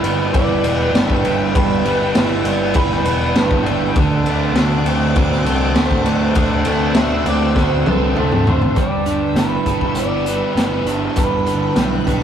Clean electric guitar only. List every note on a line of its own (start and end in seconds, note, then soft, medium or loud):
0.00 0.33 B4 medium
0.33 1.20 D5 medium
1.55 2.75 B4 loud
2.76 3.62 B4 loud
6.96 7.27 E5 loud
7.28 7.58 D5 medium
7.59 7.88 C5 loud
7.89 8.19 B4 medium
8.18 8.48 A4 medium
8.50 8.79 C5 loud
8.79 9.38 D5 loud
9.38 9.97 B4 medium
9.97 10.58 D5 medium
10.58 10.83 C5 medium
11.18 12.23 B4 loud